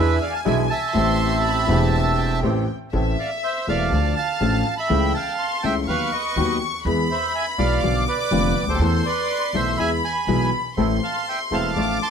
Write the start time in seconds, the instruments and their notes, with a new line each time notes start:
Already playing: grand piano E2 E3 B3 D4 G#4, upright bass E2, bandoneon G#3 D4 E4 B4 E5, violin section G#5
0.21 bandoneon D5 F5
0.34 bandoneon F5 A5
0.44 grand piano B1 B2 E3 B3 D4 G#4, upright bass B1, bandoneon G#3 D4 E4 E5 G#5
0.70 bandoneon E5 A5
0.93 upright bass A1, grand piano A1 A2 E3 A3 C4 G4, bandoneon A3 C4 G4, violin section C6
1.42 violin section B5
1.67 grand piano E1 E2 E3 A3 C4, upright bass E1, bandoneon A3 C4 G4
1.71 grand piano G4
1.92 violin section A5
2.18 violin section G5
2.42 upright bass A1, grand piano A1 A2 E3 A3 C4 G4, bandoneon A3 C4 G4
2.92 upright bass A1, grand piano A1 A2 E3 A3 C4 A4, violin section E5
3.19 bandoneon D5 F5
3.43 bandoneon C5 E5
3.67 upright bass E1, grand piano E1 E2 E3 A3 C4 A4, bandoneon D5 F5
3.92 upright bass D2, grand piano D2 D3 F3 A3 D4 A4, violin section A5
4.17 bandoneon F5 A5
4.41 upright bass A1, grand piano A1 A2 F3 A3 D4 A4
4.77 bandoneon E5 B5
4.89 upright bass C#2, grand piano C#2 C#3 E3 A3 C#4 A4, violin section G5
5.14 bandoneon F5 A5
5.38 violin section C6
5.63 grand piano C#2 C#3 E3 A3 C#4 A4, upright bass C#2, bandoneon E5 G5
5.87 upright bass D#2, grand piano D#2 D#3 F#3 B3 F#4, bandoneon B4 F5, violin section C#6
6.12 bandoneon B4 D#5
6.36 upright bass D#2, grand piano D#2 D#3 F#3 B3 F#4
6.84 upright bass E2, grand piano E2 E3 G#3 B3 G#4, violin section B5
7.11 bandoneon C5 E5
7.35 bandoneon E5 G#5
7.58 upright bass B1, grand piano B1 B2 E3 G#3 B3 G#4, bandoneon D5 F5
7.81 upright bass B1, grand piano B1 B2 D3 F3 B3 F4, violin section D6
8.08 bandoneon B4 D5
8.31 upright bass F1, grand piano F1 F2 D3 F3 B3 F4
8.62 upright bass C#2, grand piano C#2
8.67 upright bass D2, grand piano D2, bandoneon A4 C5
8.73 upright bass D#2, grand piano D#2
8.79 upright bass E2, grand piano E2 E3 A3 B3 A4, violin section C6
9.06 bandoneon B4 D5
9.53 upright bass B1, grand piano B1 B2 E3 A3 B3 A4, bandoneon C5 E5
9.77 upright bass E2, grand piano E2 E3 G#3 B3 G#4, bandoneon E5 G#5, violin section B5
10.04 bandoneon G#5 B5
10.27 upright bass B1, grand piano B1 B2 E3 G#3 B3 G#4, violin section B5
10.76 upright bass A1, grand piano A1 A2 E3 A3 C4 A4, bandoneon A3 C4 E4, violin section C6
11.04 bandoneon F5 A5
11.29 bandoneon E5 G5
11.51 upright bass E1, grand piano E1 E2 E3 A3 C4 A4, bandoneon A3 C4 E4 F5 A5
11.75 upright bass A1, grand piano A1 A2 F3 A3 D4 A4, bandoneon A3 D4 F4, violin section D6
12.02 bandoneon A5 C6